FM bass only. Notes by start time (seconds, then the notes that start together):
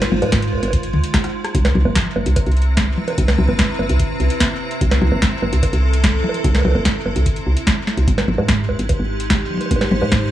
0.12 G#1
0.22 G#2
0.53 D#1
0.63 G#1
0.93 D#2
1.55 C2
1.75 C2
1.85 G1
2.16 G1
2.26 C2
2.47 C2
3.18 C2
3.38 C2
3.49 G1
3.79 G1
3.89 C2
4.20 C2
4.81 C2
5.02 C2
5.12 G1
5.42 G1
5.53 C2
5.73 C2
6.44 C2
6.65 C2
6.75 G1
7.06 G1
7.16 C2
7.46 C2
7.97 C2
8.08 G#1
8.28 G#1
8.38 G#2
8.69 D#1
8.79 G#1
8.99 G#1
9.71 G#1
9.91 G#1
10.01 G#2